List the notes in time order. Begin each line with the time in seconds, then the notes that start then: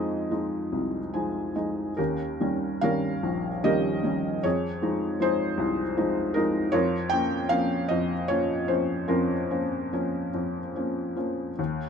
Already playing: F2 F3 G#3 D#4 G#4 D#5
0.31 F3 G#3 D#4
0.72 C2
1.14 F3 G#3 D#4 G#5
1.55 F3 G#3 D#4 D#5
1.97 D#2 C#4 G4 A#4
2.40 D#3 G3 C#4
2.81 D#3 G3 C#4 A#4 C#5 F5
3.23 A#1
3.64 D#3 G3 C#4 G4 A#4 D#5
4.03 D#3 G3 C#4
4.43 F2 G#4 C#5
4.82 F3 G#3 D#4
5.20 F3 G#3 D#4 G#4 C5
5.58 C2
5.97 F3 G#3 D#4
6.34 F3 G#3 D#4 A#4
6.72 F2 F4 A#4 C#5
7.10 F3 A#3 C#4 G5
7.49 F3 A#3 C#4 F5
7.88 F2 D#5
8.28 F3 A#3 C#4 C#5
8.68 F3 A#3 C#4 C5
9.08 F2 C#4 F4 A#4
9.51 F3 A#3 C#4
9.93 F3 A#3 C#4
10.34 F2
10.76 F3 A#3 C#4
11.16 F3 A#3 C#4
11.59 D#2